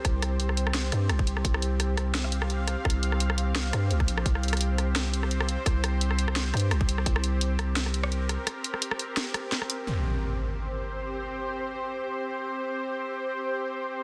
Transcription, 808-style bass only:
X:1
M:4/4
L:1/8
Q:"Swing 16ths" 1/4=171
K:Dblyd
V:1 name="808-style bass" clef=bass
C,,4- C,, G,, C,,2 | C,,6- C,, z | C,,4- C,, G,, D,, B,,, | C,,6- C,, z |
C,,4- C,, G,, C,,2 | C,,6- C,, z | z8 | z8 |
z8 | z8 |]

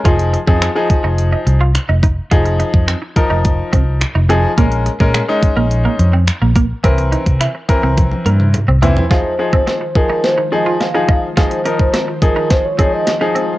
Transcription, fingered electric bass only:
X:1
M:4/4
L:1/16
Q:1/4=106
K:Fm
V:1 name="Fingered electric bass" clef=bass
F,,,3 F,,2 z2 F,,,3 C,,3 F,,,3 | F,,,3 F,,2 z2 F,,,3 C,,3 F,,,3 | B,,,3 B,,2 z2 B,,,3 F,,3 B,,,3 | C,,3 C,2 z2 C,,3 G,,3 C,,3 |
z16 | z16 |]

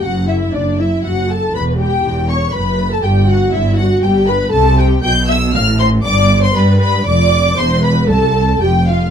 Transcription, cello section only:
X:1
M:3/4
L:1/8
Q:1/4=118
K:Glyd
V:1 name="Cello section" clef=bass
F,,2 F,,2 F,,2 | E,,2 E,,2 F,,2 | G,,2 G,,2 G,,2 | [K:C] C,2 B,,2 A,,2 |
G,,2 G,2 F,,2 | E,,2 C,,2 F,,2 |]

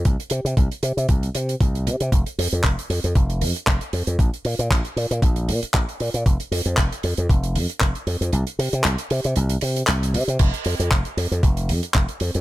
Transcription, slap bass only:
X:1
M:4/4
L:1/16
Q:"Swing 16ths" 1/4=116
K:Cmix
V:1 name="Slap bass" clef=bass
C,, z C, C, C,, z C, C, C,, z C, z C,,2 C, C, | F,,, z F,, F,, F,,, z F,, F,, F,,,2 F,, z F,,, z F,, F,, | B,,, z B,, B,, B,,, z B,, B,, B,,,2 B,, z B,,, z B,, B,, | F,,, z F,, F,, F,,, z F,, F,, F,,,2 F,, z F,,, z F,, F,, |
C,, z C, C, C,, z C, C, C,, z C, z C,,2 C, C, | F,,, z F,, F,, F,,, z F,, F,, F,,,2 F,, z F,,, z F,, F,, |]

